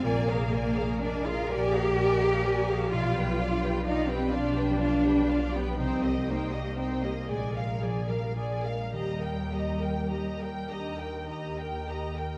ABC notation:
X:1
M:6/8
L:1/16
Q:3/8=41
K:Eb
V:1 name="Violin section"
a f a f a f a f a f a f | f g f g f g f g f g f g | g e g e g e a f a f a f | b g b g b g b g b g b g |]
V:2 name="Violin section"
d B d B d B d B d B d B | d =B d B d B d B d B d B | c e c e c e d f d f d f | e g e g e g e g e g e g |]
V:3 name="Viola section"
B A B A B A B A B A B A | F G F G F G F G F G F G | E G E G E G A B A B A B | G B G B G B G B G B G B |]
V:4 name="Cello section"
B,4 D F G6 | F4 E C D4- D =B, | C2 B,2 C B, A,2 F, G, F, A, | G,6 z6 |]
V:5 name="Harp" clef=bass
[B,,A,F]2 F2 A,2 G,2 A,2 F,2 | =B,,2 D2 G,2 F,2 G,2 F,2 | C,2 G,2 [Ec]2 B,,2 B,2 [Fd]2 | E,2 e2 E2 D2 E2 B,2 |]
V:6 name="Double bass section" clef=bass
B,,,6 B,,,6 | =B,,,6 B,,,6 | C,,6 B,,,6 | E,,6 E,,6 |]